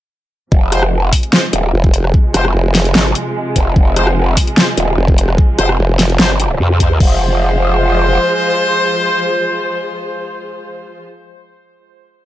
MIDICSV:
0, 0, Header, 1, 6, 480
1, 0, Start_track
1, 0, Key_signature, -4, "minor"
1, 0, Tempo, 405405
1, 613, Time_signature, 4, 2, 24, 8
1, 14504, End_track
2, 0, Start_track
2, 0, Title_t, "Brass ensemble"
2, 0, Program_c, 0, 61
2, 853, Note_on_c, 0, 56, 93
2, 853, Note_on_c, 0, 65, 84
2, 853, Note_on_c, 0, 72, 104
2, 971, Note_off_c, 0, 56, 0
2, 971, Note_off_c, 0, 65, 0
2, 971, Note_off_c, 0, 72, 0
2, 1574, Note_on_c, 0, 56, 87
2, 1574, Note_on_c, 0, 65, 79
2, 1574, Note_on_c, 0, 72, 101
2, 1691, Note_off_c, 0, 56, 0
2, 1691, Note_off_c, 0, 65, 0
2, 1691, Note_off_c, 0, 72, 0
2, 2773, Note_on_c, 0, 65, 90
2, 2774, Note_on_c, 0, 56, 96
2, 2774, Note_on_c, 0, 72, 100
2, 2891, Note_off_c, 0, 56, 0
2, 2891, Note_off_c, 0, 65, 0
2, 2891, Note_off_c, 0, 72, 0
2, 4693, Note_on_c, 0, 56, 93
2, 4694, Note_on_c, 0, 65, 86
2, 4694, Note_on_c, 0, 72, 105
2, 4811, Note_off_c, 0, 56, 0
2, 4811, Note_off_c, 0, 65, 0
2, 4811, Note_off_c, 0, 72, 0
2, 5413, Note_on_c, 0, 56, 90
2, 5414, Note_on_c, 0, 65, 81
2, 5414, Note_on_c, 0, 72, 103
2, 5531, Note_off_c, 0, 56, 0
2, 5531, Note_off_c, 0, 65, 0
2, 5531, Note_off_c, 0, 72, 0
2, 6613, Note_on_c, 0, 56, 92
2, 6613, Note_on_c, 0, 65, 87
2, 6613, Note_on_c, 0, 72, 110
2, 6731, Note_off_c, 0, 56, 0
2, 6731, Note_off_c, 0, 65, 0
2, 6731, Note_off_c, 0, 72, 0
2, 7333, Note_on_c, 0, 56, 89
2, 7333, Note_on_c, 0, 65, 83
2, 7333, Note_on_c, 0, 72, 105
2, 7451, Note_off_c, 0, 56, 0
2, 7451, Note_off_c, 0, 65, 0
2, 7451, Note_off_c, 0, 72, 0
2, 8294, Note_on_c, 0, 56, 100
2, 8294, Note_on_c, 0, 65, 92
2, 8294, Note_on_c, 0, 72, 109
2, 13033, Note_off_c, 0, 56, 0
2, 13033, Note_off_c, 0, 65, 0
2, 13033, Note_off_c, 0, 72, 0
2, 14504, End_track
3, 0, Start_track
3, 0, Title_t, "String section"
3, 0, Program_c, 1, 48
3, 614, Note_on_c, 1, 48, 81
3, 614, Note_on_c, 1, 53, 74
3, 614, Note_on_c, 1, 56, 90
3, 8246, Note_off_c, 1, 48, 0
3, 8246, Note_off_c, 1, 56, 0
3, 8247, Note_off_c, 1, 53, 0
3, 8293, Note_on_c, 1, 53, 80
3, 8293, Note_on_c, 1, 65, 74
3, 8293, Note_on_c, 1, 68, 72
3, 8293, Note_on_c, 1, 72, 90
3, 13033, Note_off_c, 1, 53, 0
3, 13033, Note_off_c, 1, 65, 0
3, 13033, Note_off_c, 1, 68, 0
3, 13033, Note_off_c, 1, 72, 0
3, 14504, End_track
4, 0, Start_track
4, 0, Title_t, "Wobble bass"
4, 0, Program_c, 2, 39
4, 613, Note_on_c, 2, 29, 93
4, 1315, Note_off_c, 2, 29, 0
4, 1813, Note_on_c, 2, 27, 101
4, 2035, Note_off_c, 2, 27, 0
4, 2773, Note_on_c, 2, 29, 103
4, 2995, Note_off_c, 2, 29, 0
4, 3493, Note_on_c, 2, 32, 97
4, 3715, Note_off_c, 2, 32, 0
4, 4213, Note_on_c, 2, 29, 99
4, 4435, Note_off_c, 2, 29, 0
4, 4453, Note_on_c, 2, 29, 93
4, 5155, Note_off_c, 2, 29, 0
4, 5653, Note_on_c, 2, 27, 103
4, 5875, Note_off_c, 2, 27, 0
4, 6613, Note_on_c, 2, 29, 100
4, 6835, Note_off_c, 2, 29, 0
4, 7333, Note_on_c, 2, 31, 102
4, 7795, Note_off_c, 2, 31, 0
4, 7813, Note_on_c, 2, 41, 98
4, 8275, Note_off_c, 2, 41, 0
4, 8293, Note_on_c, 2, 29, 94
4, 9686, Note_off_c, 2, 29, 0
4, 14504, End_track
5, 0, Start_track
5, 0, Title_t, "Wobble bass"
5, 0, Program_c, 3, 39
5, 2053, Note_on_c, 3, 29, 102
5, 2515, Note_off_c, 3, 29, 0
5, 3013, Note_on_c, 3, 29, 95
5, 3475, Note_off_c, 3, 29, 0
5, 5893, Note_on_c, 3, 29, 100
5, 6355, Note_off_c, 3, 29, 0
5, 6854, Note_on_c, 3, 29, 100
5, 7315, Note_off_c, 3, 29, 0
5, 14504, End_track
6, 0, Start_track
6, 0, Title_t, "Drums"
6, 613, Note_on_c, 9, 36, 120
6, 732, Note_off_c, 9, 36, 0
6, 853, Note_on_c, 9, 37, 60
6, 853, Note_on_c, 9, 42, 82
6, 972, Note_off_c, 9, 37, 0
6, 972, Note_off_c, 9, 42, 0
6, 978, Note_on_c, 9, 37, 75
6, 1096, Note_off_c, 9, 37, 0
6, 1333, Note_on_c, 9, 36, 60
6, 1333, Note_on_c, 9, 46, 95
6, 1452, Note_off_c, 9, 36, 0
6, 1452, Note_off_c, 9, 46, 0
6, 1458, Note_on_c, 9, 42, 38
6, 1574, Note_on_c, 9, 38, 121
6, 1576, Note_off_c, 9, 42, 0
6, 1692, Note_off_c, 9, 38, 0
6, 1814, Note_on_c, 9, 42, 83
6, 1932, Note_off_c, 9, 42, 0
6, 2178, Note_on_c, 9, 36, 106
6, 2293, Note_on_c, 9, 42, 85
6, 2296, Note_off_c, 9, 36, 0
6, 2412, Note_off_c, 9, 42, 0
6, 2418, Note_on_c, 9, 37, 58
6, 2533, Note_on_c, 9, 36, 121
6, 2536, Note_off_c, 9, 37, 0
6, 2652, Note_off_c, 9, 36, 0
6, 2774, Note_on_c, 9, 37, 61
6, 2774, Note_on_c, 9, 42, 86
6, 2892, Note_off_c, 9, 37, 0
6, 2892, Note_off_c, 9, 42, 0
6, 2898, Note_on_c, 9, 37, 72
6, 3016, Note_off_c, 9, 37, 0
6, 3253, Note_on_c, 9, 38, 66
6, 3253, Note_on_c, 9, 46, 97
6, 3371, Note_off_c, 9, 38, 0
6, 3371, Note_off_c, 9, 46, 0
6, 3378, Note_on_c, 9, 42, 37
6, 3493, Note_on_c, 9, 38, 127
6, 3496, Note_off_c, 9, 42, 0
6, 3612, Note_off_c, 9, 38, 0
6, 3618, Note_on_c, 9, 37, 50
6, 3733, Note_on_c, 9, 42, 83
6, 3736, Note_off_c, 9, 37, 0
6, 3851, Note_off_c, 9, 42, 0
6, 4213, Note_on_c, 9, 36, 61
6, 4213, Note_on_c, 9, 42, 84
6, 4332, Note_off_c, 9, 36, 0
6, 4332, Note_off_c, 9, 42, 0
6, 4453, Note_on_c, 9, 36, 126
6, 4572, Note_off_c, 9, 36, 0
6, 4693, Note_on_c, 9, 37, 63
6, 4693, Note_on_c, 9, 42, 82
6, 4812, Note_off_c, 9, 37, 0
6, 4812, Note_off_c, 9, 42, 0
6, 4818, Note_on_c, 9, 37, 79
6, 4936, Note_off_c, 9, 37, 0
6, 5173, Note_on_c, 9, 36, 67
6, 5173, Note_on_c, 9, 46, 96
6, 5292, Note_off_c, 9, 36, 0
6, 5292, Note_off_c, 9, 46, 0
6, 5298, Note_on_c, 9, 42, 36
6, 5414, Note_on_c, 9, 38, 127
6, 5416, Note_off_c, 9, 42, 0
6, 5532, Note_off_c, 9, 38, 0
6, 5654, Note_on_c, 9, 42, 79
6, 5772, Note_off_c, 9, 42, 0
6, 6018, Note_on_c, 9, 36, 107
6, 6134, Note_on_c, 9, 42, 84
6, 6136, Note_off_c, 9, 36, 0
6, 6252, Note_off_c, 9, 42, 0
6, 6258, Note_on_c, 9, 37, 59
6, 6373, Note_on_c, 9, 36, 123
6, 6376, Note_off_c, 9, 37, 0
6, 6492, Note_off_c, 9, 36, 0
6, 6613, Note_on_c, 9, 37, 65
6, 6613, Note_on_c, 9, 42, 80
6, 6731, Note_off_c, 9, 37, 0
6, 6731, Note_off_c, 9, 42, 0
6, 6738, Note_on_c, 9, 37, 80
6, 6856, Note_off_c, 9, 37, 0
6, 7093, Note_on_c, 9, 38, 66
6, 7093, Note_on_c, 9, 46, 88
6, 7212, Note_off_c, 9, 38, 0
6, 7212, Note_off_c, 9, 46, 0
6, 7218, Note_on_c, 9, 42, 37
6, 7333, Note_on_c, 9, 38, 127
6, 7336, Note_off_c, 9, 42, 0
6, 7452, Note_off_c, 9, 38, 0
6, 7458, Note_on_c, 9, 37, 55
6, 7573, Note_on_c, 9, 42, 76
6, 7576, Note_off_c, 9, 37, 0
6, 7692, Note_off_c, 9, 42, 0
6, 8053, Note_on_c, 9, 36, 61
6, 8053, Note_on_c, 9, 42, 82
6, 8172, Note_off_c, 9, 36, 0
6, 8172, Note_off_c, 9, 42, 0
6, 8293, Note_on_c, 9, 36, 112
6, 8293, Note_on_c, 9, 49, 87
6, 8412, Note_off_c, 9, 36, 0
6, 8412, Note_off_c, 9, 49, 0
6, 14504, End_track
0, 0, End_of_file